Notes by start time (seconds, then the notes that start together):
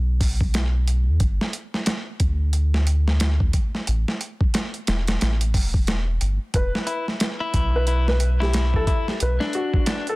Already playing: B1
0.21 kick, open hi-hat
0.41 kick
0.54 snare, closed hi-hat
0.88 closed hi-hat
1.07 E2
1.20 G1, kick, closed hi-hat
1.41 snare
1.53 closed hi-hat
1.74 snare
1.86 snare, closed hi-hat
2.20 D2, kick, closed hi-hat
2.53 closed hi-hat
2.74 snare
2.87 closed hi-hat
3.08 snare
3.20 snare, closed hi-hat
3.40 kick
3.53 kick, closed hi-hat
3.75 snare
3.87 A1, closed hi-hat
4.08 snare
4.21 closed hi-hat
4.41 kick
4.54 snare, closed hi-hat
4.74 closed hi-hat
4.87 E1, snare, closed hi-hat
5.07 snare, closed hi-hat
5.21 A1, snare, closed hi-hat
5.41 closed hi-hat
5.54 E1, kick, open hi-hat
5.74 kick
5.87 snare, closed hi-hat
6.21 G1, closed hi-hat
6.54 E1 B4, kick, closed hi-hat
6.75 snare
6.87 E4, closed hi-hat
7.08 snare
7.20 snare, closed hi-hat
7.40 E4
7.54 B1, kick, closed hi-hat
7.76 B4
7.87 E4, closed hi-hat
8.08 B4, snare
8.20 closed hi-hat
8.40 E4 G4, snare
8.54 snare, closed hi-hat
8.74 A4, kick
8.87 E4, kick, closed hi-hat
9.08 snare
9.20 B1 B4, closed hi-hat
9.40 D4, snare
9.53 F#4, closed hi-hat
9.74 kick
9.86 D4, snare, closed hi-hat
10.07 A4, closed hi-hat